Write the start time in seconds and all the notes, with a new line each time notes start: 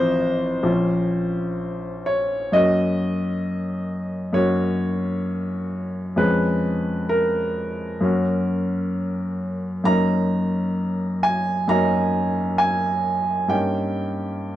Already playing: A1 F3 C4 F4 C5 D#5
0.63 A#1 F3 C#4 F4
2.06 C#5
2.52 F#2 A#3 C#4 F#4 D#5
4.33 F#2 A#3 C#4 F#4 C#5
6.16 F2 G#3 C#4 G#4 B4
7.09 A#4
8.01 F#2 A#3 C#4 F#4
9.84 F#2 A#3 C#4 D#4 A#5
11.23 G#5
11.68 F#2 A#3 C#4 D#4 A#5
12.58 G#5
13.48 G2 A#3 C#4 D#4 G5